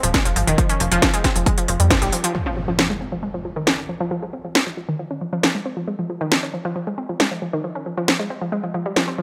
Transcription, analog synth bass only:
0.03 D#1
0.25 F1
0.36 G#1
0.47 F1
0.80 F1
0.92 F1
1.36 F1
1.68 F1
1.80 F2
2.02 G#1

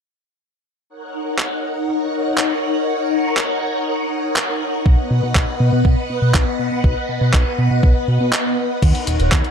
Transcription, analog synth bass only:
4.86 B1
5.11 B2
5.23 B2
5.35 B1
5.60 B2
5.73 B2
5.85 B1
6.10 B2
6.22 B2
6.35 B1
6.59 B2
6.72 B2
6.84 B1
7.09 B2
7.21 B2
7.34 B1
7.58 B2
7.71 B2
7.83 B1
8.08 B2
8.20 B2
8.82 D#2
9.07 D#1
9.20 D#1
9.32 D#2

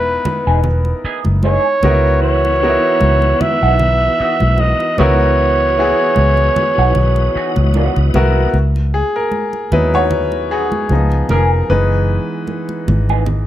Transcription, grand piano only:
Already playing: B3 D#4 E4 A#4 B4
1.83 B3 D#4 F#4 A#4
1.90 E4
2.62 B3 D#4 F#4 A#4
2.69 E4
4.98 B3 E4 F#4 A#4
5.78 B3 E4 F#4 G#4
8.14 B3 E4 F#4 A#4
8.94 G#4
9.16 A#4
9.73 F#3 B3 D#4 E4 B4
9.95 C#5
10.51 G#4
10.91 F3 B3 D#4
11.30 A#4
11.70 E3 G#3 B3 D#4 B4

